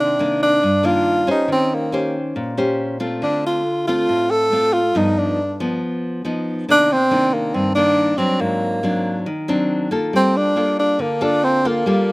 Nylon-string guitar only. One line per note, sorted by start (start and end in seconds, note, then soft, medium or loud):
0.00 0.61 C3 medium
0.00 0.16 D#3 medium
0.00 0.16 A#3 medium
0.00 0.17 D4 medium
0.19 0.62 D#3 medium
0.19 0.63 A#3 medium
0.19 0.63 D4 medium
0.63 1.47 G2 medium
0.83 1.23 D#3 medium
0.83 1.24 A#3 medium
0.83 1.24 D4 medium
1.27 1.89 C#4 medium
1.27 1.89 G4 medium
1.27 1.89 C5 medium
1.48 2.33 D#3 medium
1.92 2.54 C#4 medium
1.92 2.54 G4 medium
1.92 2.54 C5 medium
2.36 3.20 A#2 medium
2.57 2.97 C#4 medium
2.57 2.97 G4 medium
2.57 2.97 C5 medium
3.00 3.61 A3 medium
3.00 3.61 C4 medium
3.00 3.62 F4 medium
3.22 4.06 D3 medium
3.88 4.49 A3 medium
3.88 4.49 C4 medium
3.88 4.49 F4 medium
4.09 4.93 A2 medium
4.52 4.79 A3 medium
4.52 4.80 C4 soft
4.52 4.80 F4 medium
4.95 5.79 G2 medium
4.95 5.38 F3 soft
4.95 5.38 B3 medium
4.95 5.38 D#4 medium
5.60 6.21 F3 medium
5.60 6.21 B3 medium
6.25 6.64 F3 medium
6.25 6.64 B3 medium
6.25 6.65 D#4 medium
6.69 7.52 C3 medium
6.69 6.96 D#3 soft
6.69 6.96 A#3 soft
6.69 6.96 D4 medium
7.11 7.72 D#3 medium
7.11 7.72 A#3 medium
7.11 7.72 D4 medium
7.54 8.38 G2 medium
7.76 8.15 D#3 medium
7.76 8.16 A#3 medium
7.76 8.16 D4 medium
8.18 8.80 F#3 medium
8.18 8.80 C4 medium
8.18 8.80 D4 medium
8.39 9.24 G#2 medium
8.83 9.26 F#3 medium
8.83 9.26 C4 medium
8.83 9.27 D4 medium
9.26 10.11 D#3 medium
9.48 9.88 F#3 medium
9.48 9.88 C4 medium
9.48 9.89 D4 medium
9.91 10.53 A#3 medium
9.91 10.53 F4 medium
9.91 10.53 A4 medium
10.13 10.97 G3 medium
10.56 11.18 A#3 medium
10.56 11.18 F4 medium
10.56 11.18 A4 medium
10.99 11.83 D3 medium
11.21 11.61 A#3 medium
11.21 11.61 F4 medium
11.21 11.61 A4 medium
11.65 11.83 A#3 medium
11.65 11.83 F4 medium
11.65 11.83 A4 medium
11.86 12.12 G3 medium
11.86 12.12 A#3 soft
11.86 12.12 F4 medium
11.86 12.12 A4 medium